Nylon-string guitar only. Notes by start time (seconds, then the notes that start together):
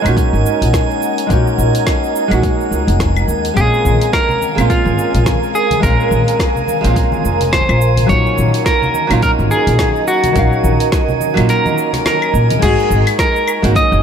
0.02 G#3 A#3 C#4
0.06 D#4 F#4
1.27 G#3 A#3 C#4
1.31 D#4 F#4
2.28 G#3 A#3 C#4
2.32 D#4 F#4
3.54 G#3 A#3 C4
3.58 C#4 F4
4.55 G#3 A#3 C4
4.59 C#4 F4
5.80 G#3 A#3 C4
5.84 C#4 F4
6.81 G#3 A#3 C4
6.85 C#4 F4
8.06 F#3 A#3 C#4
8.10 D#4 F4
9.07 F#3 A#3 C#4
9.12 D#4 F4
10.33 F#3 A#3 C#4
10.37 D#4 F5
11.34 F#3 A#3 C#4
11.38 D#4 F4
12.59 G#3 A#3
12.63 D#4 F#4
13.62 G#3 A#3 C#4 D#4 F#4